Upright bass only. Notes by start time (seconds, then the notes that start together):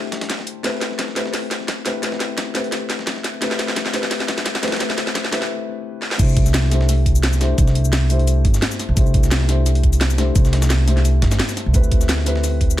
Already playing: C2
0.12 A1
0.21 G1
0.64 D2
2.03 D2
2.90 A1
3.34 D2
3.42 D2
6.19 C2
7.58 C2
8.45 G1
8.88 C2
8.97 C2
10.35 C2
11.22 G1
11.66 C2
11.74 D2